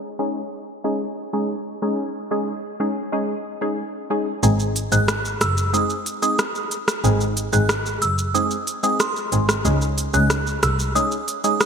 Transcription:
0.19 G#3 C#4 D#4 G#4
0.84 G#3 C#4 D#4 G#4
1.33 G#3 C#4 D#4 G#4
1.82 G#3 C#4 D#4 G#4
2.31 G#3 C#4 D#4 G#4
2.80 G#3 C#4 D#4 G#4
3.12 G#3 C#4 D#4 G#4
3.61 G#3 C#4 D#4 G#4
4.10 G#3 C#4 D#4 G#4
4.43 G#1 G#3 C4 D#4 G#4, shaker
4.60 shaker
4.76 closed hi-hat, shaker
4.92 G#1 G#3 C4 D#4 G#4 F#6, shaker
5.08 cross-stick, shaker
5.25 shaker
5.41 F#1 E6, cross-stick, closed hi-hat, shaker
5.57 shaker
5.73 G#3 C4 D#4 G#4 D#6, shaker
5.90 shaker
6.06 closed hi-hat, shaker
6.22 G#3 C4 D#4 G#4 D#6, shaker
6.39 cross-stick, shaker
6.55 shaker
6.71 closed hi-hat, shaker
6.88 cross-stick, shaker
7.04 G#1 G#3 C4 D#4 G#4, shaker
7.21 shaker
7.37 closed hi-hat, shaker
7.53 G#1 G#3 C4 D#4 G#4 F#6, shaker
7.69 cross-stick, shaker
7.86 shaker
8.02 F#1 E6, closed hi-hat, shaker
8.18 shaker
8.34 G#3 C4 D#4 G#4 D#6, shaker
8.51 shaker
8.67 closed hi-hat, shaker
8.83 G#3 C4 D#4 G#4 D#6, shaker
9.00 C6, cross-stick, shaker
9.16 shaker
9.32 G#1 G#3 C4 D#4 G#4, closed hi-hat, shaker
9.49 cross-stick, shaker
9.65 C#2 G#3 C#4 D#4 G#4, shaker
9.81 shaker
9.98 closed hi-hat, shaker
10.14 C#2 G#3 C#4 D#4 G#4 F#6, shaker
10.30 cross-stick, shaker
10.47 shaker
10.63 C2 E6, cross-stick, closed hi-hat, shaker
10.79 shaker
10.95 G#3 C#4 D#4 G#4 D#6, shaker
11.12 shaker
11.28 closed hi-hat, shaker
11.44 G#3 C#4 D#4 G#4 D#6, shaker
11.60 cross-stick, shaker

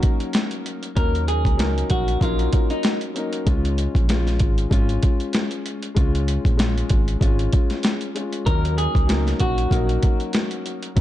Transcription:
Already playing: F#3 A#3 C#4 D#4 F#4 A#4
0.03 kick, closed hi-hat
0.20 closed hi-hat
0.33 snare, closed hi-hat
0.51 closed hi-hat
0.66 closed hi-hat
0.83 closed hi-hat
0.95 D#2 F#3 A#3 C#4 D#4 A#4, kick, closed hi-hat
1.15 closed hi-hat
1.28 G#4, closed hi-hat
1.45 C#2, kick, closed hi-hat
1.57 F#3 A#3 C#4 D#4 A#4, snare, closed hi-hat
1.78 closed hi-hat
1.90 A#1 F#4, kick, closed hi-hat
2.08 closed hi-hat
2.20 A#1 F#3 A#3 C#4 D#4 F4 A#4, kick, closed hi-hat
2.39 closed hi-hat
2.53 kick, closed hi-hat
2.70 D#4, closed hi-hat
2.83 snare, closed hi-hat
3.01 closed hi-hat
3.14 F#3 A#3 C#4 D#4 A#4, closed hi-hat
3.33 closed hi-hat
3.46 C#2 G#3 C#4 F4, kick, closed hi-hat
3.65 closed hi-hat
3.78 closed hi-hat
3.95 A#1, kick, closed hi-hat
4.08 G#3 C#4 F4, snare, closed hi-hat
4.27 snare, closed hi-hat
4.40 G#1, kick, closed hi-hat
4.58 closed hi-hat
4.70 G#1 G#3 C#4 F4, kick, closed hi-hat
4.89 closed hi-hat
5.03 kick, closed hi-hat
5.20 closed hi-hat
5.33 snare, closed hi-hat
5.51 closed hi-hat
5.66 closed hi-hat
5.83 closed hi-hat
5.95 C#2 G#3 C#4 F4, kick, closed hi-hat
6.15 closed hi-hat
6.28 closed hi-hat
6.45 A#1, kick, closed hi-hat
6.57 G#3 C#4 F4, snare, closed hi-hat
6.78 closed hi-hat
6.90 G#1, kick, closed hi-hat
7.08 closed hi-hat
7.20 G#1 G#3 C#4 F4, kick, closed hi-hat
7.39 closed hi-hat
7.53 kick, closed hi-hat
7.70 snare, closed hi-hat
7.83 snare, closed hi-hat
8.01 closed hi-hat
8.15 G#3 C#4 F4, closed hi-hat
8.33 closed hi-hat
8.46 D#2 F#3 A#3 C#4 D#4 A#4, kick, closed hi-hat
8.65 closed hi-hat
8.78 G#4, closed hi-hat
8.95 C#2, kick, closed hi-hat
9.07 F#3 A#3 C#4 D#4 A#4, snare, closed hi-hat
9.27 snare, closed hi-hat
9.40 A#1 F#4, kick, closed hi-hat
9.58 closed hi-hat
9.70 A#1 F#3 A#3 C#4 D#4 A#4, kick, closed hi-hat
9.89 closed hi-hat
10.03 kick, closed hi-hat
10.20 closed hi-hat
10.33 snare, closed hi-hat
10.51 closed hi-hat
10.66 closed hi-hat
10.83 closed hi-hat
10.96 D#2 F#3 A#3 C#4 D#4, kick, closed hi-hat

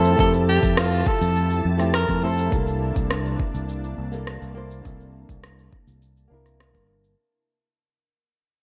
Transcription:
Already playing: F2 F3 A3 C4 E4 G4 A4 C5 A5
0.05 cabasa
0.16 F2 A3 C4, kick, cabasa
0.20 E4 G4 A4
0.34 cabasa
0.49 G4
0.63 F2, kick, cabasa
0.77 F4, cross-stick, cabasa
0.92 cabasa
1.07 A4, kick
1.21 F2, cabasa
1.36 cabasa
1.50 cabasa
1.65 F2
1.78 A3 C4 E4 G4, cross-stick, cabasa
1.94 A#4, cross-stick, cabasa
2.09 F2, kick, cabasa
2.22 A3 C4 E4 A4 C5
2.38 cabasa
2.49 C2 C3 A#3 D4, kick, cabasa
2.53 E4 A4
2.67 cabasa
2.96 C2, kick, cabasa
3.11 cross-stick, cabasa
3.25 cabasa
3.40 kick
3.54 C2, cabasa
3.69 cabasa
3.84 cabasa
3.98 C2
4.11 A#3 D4 E4 A4, cabasa
4.27 cross-stick, cabasa
4.42 C2, cabasa
4.54 A#3 D4 E4 C5
4.71 cabasa
4.82 C2 A#3 D4, kick, cabasa
4.86 E4 A4
5.00 cabasa
5.29 C2, kick, cabasa
5.44 cross-stick, cabasa
5.59 cabasa
5.73 kick
5.87 C2, cabasa
6.02 cabasa
6.17 cabasa
6.28 C2 A#3 D4
6.32 E4 A#4
6.46 cross-stick, cabasa
6.60 cross-stick, cabasa
6.75 G1, kick, cabasa
7.04 cabasa

